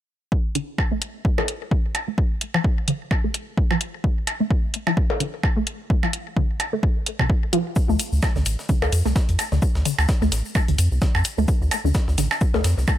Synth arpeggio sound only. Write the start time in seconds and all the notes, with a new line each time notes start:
0.55 D3
0.92 A3
1.38 F3
1.71 D3
2.08 A3
2.54 F3
2.88 D3
3.24 A3
3.71 F3
4.04 D3
4.40 A3
4.87 F3
5.20 D3
5.57 A3
6.03 F3
6.37 D3
6.73 A3
7.20 C3
7.53 F3
7.89 A3
8.36 D3
8.69 D3
9.05 A3
9.52 D3
9.86 D3
10.22 A3
10.68 D3
11.02 D3
11.38 A3
11.85 D3
12.18 D3
12.54 A3